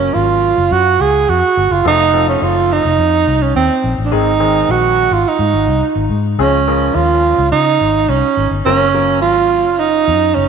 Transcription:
Already playing: upright piano F#3 A#3 C#4 A#4, tenor saxophone C#4
0.14 fingered electric bass G#1, tenor saxophone F4
0.58 fingered electric bass F#1
0.71 fingered electric bass F#2, tenor saxophone F#4
1.00 fingered electric bass C#2, tenor saxophone G#4
1.29 fingered electric bass F2, tenor saxophone F#4
1.57 fingered electric bass G1
1.71 fingered electric bass F#1, tenor saxophone F4
1.85 fingered electric bass F1, upright piano F3 A3 C4 A4, tenor saxophone D#4
2.13 upright piano F3 A3 C4 A4
2.29 tenor saxophone C#4
2.42 fingered electric bass F#1, tenor saxophone F4
2.72 tenor saxophone D#4
2.85 fingered electric bass F1
2.98 fingered electric bass F2
3.27 fingered electric bass C2
3.42 tenor saxophone C#4
3.55 fingered electric bass D#2, tenor saxophone C4
3.84 fingered electric bass A#1
3.98 fingered electric bass A1
4.04 tenor saxophone D4
4.11 fingered electric bass G#1, upright piano D#3 G#3 C4 G#4, tenor saxophone D#4
4.40 upright piano D#3 G#3 C4 G#4
4.69 fingered electric bass A#1, tenor saxophone F#4
5.11 fingered electric bass G#1, tenor saxophone F4
5.28 tenor saxophone D#4
5.39 fingered electric bass G#2
5.54 fingered electric bass G#1
5.67 fingered electric bass C2
5.81 muted fingered electric bass stroke
5.95 fingered electric bass G#1
6.09 fingered electric bass G#2
6.38 fingered electric bass C#2, upright piano F3 G#3 C#4 G#4, tenor saxophone C#4
6.68 upright piano F3 G#3 C#4 A#4
6.95 fingered electric bass D#2, tenor saxophone F4
7.38 fingered electric bass C#2
7.52 fingered electric bass C#3, tenor saxophone D#4
7.81 fingered electric bass G#1
8.08 fingered electric bass C2, tenor saxophone C#4
8.37 fingered electric bass G#1
8.51 fingered electric bass G1
8.65 fingered electric bass F#1, upright piano F#3 A#3 C#4 A#4, tenor saxophone C#4
8.94 upright piano F#3 A#3 C#4 A#4
9.21 fingered electric bass G#1, tenor saxophone F4
9.65 fingered electric bass F#1
9.79 tenor saxophone D#4
10.08 fingered electric bass F#2
10.35 fingered electric bass F#1, tenor saxophone C#4

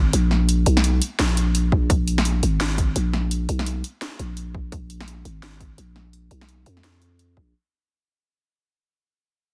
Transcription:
Already playing: 808-style bass G#1
0.13 808-style bass A#1, closed hi-hat
0.31 snare
0.49 closed hi-hat
0.66 808-style bass B1, closed hi-hat
0.77 snare
0.84 closed hi-hat
1.02 closed hi-hat
1.19 808-style bass A#1, snare, closed hi-hat
1.37 closed hi-hat
1.55 closed hi-hat
1.72 808-style bass A#1, kick
1.90 808-style bass A#1, kick, closed hi-hat
2.08 closed hi-hat
2.18 snare
2.25 closed hi-hat
2.43 808-style bass G#1, closed hi-hat
2.61 snare, closed hi-hat
2.78 kick, closed hi-hat
2.96 808-style bass A#1, closed hi-hat
3.13 snare
3.31 closed hi-hat
3.49 808-style bass B1, closed hi-hat
3.59 snare
3.66 closed hi-hat
3.84 closed hi-hat
4.02 snare, closed hi-hat
4.19 808-style bass A#1, closed hi-hat
4.37 closed hi-hat
4.55 kick
4.72 808-style bass A#1, kick, closed hi-hat
4.90 closed hi-hat
5.01 snare
5.08 closed hi-hat
5.25 808-style bass G#1, closed hi-hat
5.43 snare, closed hi-hat
5.60 kick, closed hi-hat
5.78 808-style bass A#1, closed hi-hat
5.96 snare
6.13 closed hi-hat
6.31 808-style bass B1, closed hi-hat
6.41 snare
6.49 closed hi-hat
6.66 808-style bass F2, closed hi-hat
6.77 snare
6.84 snare, closed hi-hat
7.02 closed hi-hat
7.19 closed hi-hat
7.37 808-style bass A#1, kick

